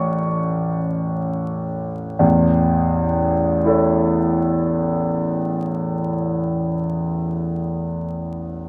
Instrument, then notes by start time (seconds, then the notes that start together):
grand piano
Already playing: A1 A3 C#4 A4 C#5 A5 C#6
2.19 A1 E2
3.65 E4 A4
3.69 C#5